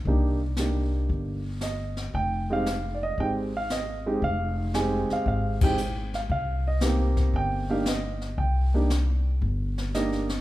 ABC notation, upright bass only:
X:1
M:4/4
L:1/8
Q:"Swing" 1/4=115
K:Cm
V:1 name="Upright bass" clef=bass
C,,4 G,,,4 | F,,,4 A,,,4 | F,,,3 z A,,,4 | C,,4 G,,,4 |
C,,4 G,,,4 |]